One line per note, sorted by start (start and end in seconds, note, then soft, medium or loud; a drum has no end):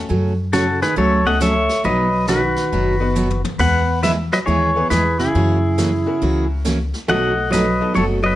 0.09 0.80 F#2 medium
0.09 0.32 C#3 medium
0.09 0.32 F#3 medium
0.09 0.32 A3 medium
0.09 0.32 C#4 medium
0.09 0.32 F#4 medium
0.09 brush sweep soft
0.53 0.65 C#3 medium
0.53 0.65 F#3 medium
0.53 0.65 A3 medium
0.53 0.65 C#4 medium
0.53 0.65 F#4 medium
0.53 0.80 F#4 medium
0.53 0.82 A4 medium
0.53 snare medium
0.53 hi-hat pedal medium
0.82 0.96 D#3 medium
0.82 0.96 G#4 medium
0.82 0.97 B4 medium
0.82 snare soft
0.96 1.67 C#2 medium
0.96 1.19 C#3 medium
0.96 1.19 F#3 medium
0.96 1.19 A3 medium
0.96 1.19 C#4 medium
0.96 1.19 F#4 medium
0.96 1.24 A4 medium
0.96 1.27 C#5 medium
0.96 brush sweep soft
1.25 1.39 A3 medium
1.25 1.40 A3 medium
1.25 1.39 C#4 medium
1.25 1.39 F#4 medium
1.25 1.40 A4 medium
1.25 1.40 D#5 medium
1.25 1.40 F#5 medium
1.25 kick medium
1.40 1.53 C#3 medium
1.40 1.53 F#3 medium
1.40 1.53 A3 medium
1.40 1.53 C#4 medium
1.40 1.53 F#4 medium
1.40 1.82 C#5 medium
1.40 1.86 E5 loud
1.40 snare medium
1.40 hi-hat pedal medium
1.69 snare soft
1.84 2.55 B1 medium
1.84 2.07 B2 medium
1.84 2.07 F#3 medium
1.84 2.07 B3 medium
1.84 2.07 D#4 medium
1.84 2.07 F#4 medium
1.84 2.25 B4 medium
1.84 2.30 D#5 loud
1.84 brush sweep soft
2.27 2.40 B2 medium
2.27 3.41 D#3 medium
2.27 2.40 F#3 medium
2.27 2.40 B3 medium
2.27 2.40 D#4 medium
2.27 2.40 F#4 medium
2.27 3.41 F#4 medium
2.27 3.41 B4 medium
2.27 snare medium
2.27 hi-hat pedal medium
2.56 snare soft
2.71 3.42 F#1 medium
2.71 2.95 B2 medium
2.71 2.95 F#3 medium
2.71 2.95 B3 medium
2.71 2.95 D#4 medium
2.71 2.95 F#4 medium
2.71 brush sweep soft
3.00 3.14 B3 medium
3.00 3.14 D#4 medium
3.00 3.14 F#4 medium
3.00 3.14 B4 medium
3.15 3.28 B2 medium
3.15 3.27 F#3 medium
3.15 3.28 B3 medium
3.15 3.28 D#4 medium
3.15 3.28 F#4 medium
3.15 hi-hat pedal medium
3.30 floor tom medium
3.44 floor tom medium
3.59 4.29 E2 medium
3.59 3.82 E3 medium
3.59 3.82 G#3 medium
3.59 3.82 B3 medium
3.59 3.82 E4 medium
3.59 3.82 G#4 medium
3.59 4.00 B4 medium
3.59 4.05 F#5 loud
3.59 brush sweep soft
3.59 kick medium
3.59 crash medium
4.03 4.15 E3 medium
4.03 4.15 G#3 medium
4.03 4.15 B3 medium
4.03 4.15 E4 medium
4.03 4.15 G#4 medium
4.03 4.11 B4 medium
4.03 4.11 E5 loud
4.03 snare medium
4.03 hi-hat pedal medium
4.32 4.38 F#3 medium
4.32 4.38 B4 medium
4.32 4.38 D#5 medium
4.32 snare soft
4.46 4.84 D#2 medium
4.46 4.69 E3 medium
4.46 4.70 G#3 medium
4.46 4.70 B3 medium
4.46 4.70 E4 medium
4.46 4.87 G#4 medium
4.46 4.70 G#4 medium
4.46 4.87 C#5 loud
4.46 brush sweep soft
4.75 4.89 B3 medium
4.75 4.89 E4 medium
4.75 4.89 G#4 medium
4.75 4.89 B4 medium
4.90 5.28 E2 medium
4.90 5.02 E3 medium
4.90 5.02 G#3 medium
4.90 5.02 B3 medium
4.90 5.02 E4 medium
4.90 5.18 G#4 medium
4.90 5.03 G#4 medium
4.90 5.20 B4 medium
4.90 snare medium
4.90 hi-hat pedal medium
5.19 6.46 C#3 medium
5.19 6.47 E4 medium
5.19 6.46 G#4 medium
5.19 snare soft
5.35 6.05 F#2 medium
5.35 5.57 C#3 medium
5.35 5.57 E3 medium
5.35 5.57 A#3 medium
5.35 5.57 C#4 medium
5.35 5.57 F#4 medium
5.35 brush sweep soft
5.78 5.90 C#3 medium
5.78 5.90 E3 medium
5.78 5.90 A#3 medium
5.78 5.90 C#4 medium
5.78 5.90 F#4 medium
5.78 snare medium
5.78 hi-hat pedal medium
6.06 6.62 C#4 medium
6.06 6.62 E4 medium
6.06 6.62 F#4 medium
6.06 6.62 A#4 medium
6.22 6.92 C#2 medium
6.22 6.44 C#3 medium
6.22 6.44 E3 medium
6.22 6.44 A#3 medium
6.22 6.44 C#4 medium
6.22 6.44 F#4 medium
6.22 brush sweep soft
6.65 6.77 C#3 medium
6.65 6.77 E3 medium
6.65 6.77 A#3 medium
6.65 6.77 C#4 medium
6.65 6.77 F#4 medium
6.65 snare medium
6.65 hi-hat pedal medium
6.94 snare soft
7.08 7.79 B1 medium
7.08 7.31 B2 medium
7.08 7.31 F#3 medium
7.08 7.31 A3 medium
7.08 7.34 B3 medium
7.08 7.34 D#4 medium
7.08 7.31 D#4 medium
7.08 7.35 F#4 medium
7.08 7.31 F#4 medium
7.08 7.35 A4 medium
7.08 7.50 D#5 medium
7.08 7.54 F#5 loud
7.08 brush sweep medium
7.52 7.64 B2 medium
7.52 7.64 F#3 medium
7.52 7.64 A3 medium
7.52 7.64 D#4 medium
7.52 7.65 F#4 medium
7.52 7.94 B4 medium
7.52 7.93 D#5 medium
7.52 snare medium
7.52 hi-hat pedal medium
7.81 8.36 B3 medium
7.81 8.36 D#4 medium
7.81 8.36 F#4 medium
7.81 8.36 A4 medium
7.95 8.36 F#1 medium
7.95 8.18 B2 medium
7.95 8.18 F#3 medium
7.95 8.19 A3 medium
7.95 8.19 D#4 medium
7.95 8.19 F#4 medium
7.95 8.05 A4 medium
7.95 8.03 C#5 medium
7.95 brush sweep soft
8.23 8.36 F#3 medium
8.23 8.36 B4 medium
8.23 8.36 D#5 medium